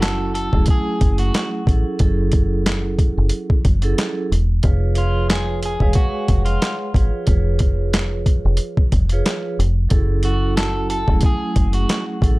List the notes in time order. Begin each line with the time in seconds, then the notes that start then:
Already playing: F#1 F#3 C#4 E4 F#4 A4
0.02 A4, snare, clap, closed hi-hat
0.35 A4, closed hi-hat
0.52 E1 F#3 A3 C#4 E4 G#4, kick
0.66 kick, closed hi-hat
0.70 G#4
1.01 F#1, kick, closed hi-hat
1.18 F#4, closed hi-hat
1.34 snare, clap, closed hi-hat
1.67 A1 F#3 C#4 E4 G#4 A4, kick, closed hi-hat
1.99 F#1 F#3 C#4 E4 G#4 A4, kick, closed hi-hat
2.32 kick, closed hi-hat
2.66 snare, clap, closed hi-hat
2.99 kick, closed hi-hat
3.18 F#1
3.29 closed hi-hat
3.50 kick
3.65 F#1, kick, closed hi-hat
3.82 F#3 C#4 E4 G#4 A4, closed hi-hat
3.98 snare, clap, closed hi-hat
4.32 E1, closed hi-hat
4.63 F1 F3 F4 G#4 B4 C#5, kick, closed hi-hat
4.95 F3 F4 G#4 B4 C#5, closed hi-hat
5.29 G#4, snare, clap, closed hi-hat
5.63 G#4, closed hi-hat
5.80 E1 G#3 G#4 B4 C#5 F5, kick
5.93 F#4, kick, closed hi-hat
6.28 F1, kick, closed hi-hat
6.45 F4, closed hi-hat
6.62 snare, clap, closed hi-hat
6.94 G#1 F3 F4 G#4 B4 C#5, kick, closed hi-hat
7.26 F1 F3 F4 G#4 B4 C#5, kick, closed hi-hat
7.59 kick, closed hi-hat
7.93 snare, clap, closed hi-hat
8.26 kick, closed hi-hat
8.45 F1
8.57 closed hi-hat
8.77 kick
8.92 F1, kick, closed hi-hat
9.09 F3 F4 G#4 B4 C#5, closed hi-hat
9.26 snare, clap, closed hi-hat
9.59 F1, closed hi-hat
9.89 F#1 F#3 C#4 E4 G#4 A4, kick, closed hi-hat
10.23 F#3 C#4 E4 F#4 A4, closed hi-hat
10.57 A4, snare, clap, closed hi-hat
10.90 A4, closed hi-hat
11.07 E1 F#3 A3 C#4 E4 G#4, kick
11.21 kick, closed hi-hat
11.26 G#4
11.56 F#1, kick, closed hi-hat
11.73 F#4, closed hi-hat
11.89 snare, clap, closed hi-hat
12.22 A1 F#3 C#4 E4 G#4 A4, kick, closed hi-hat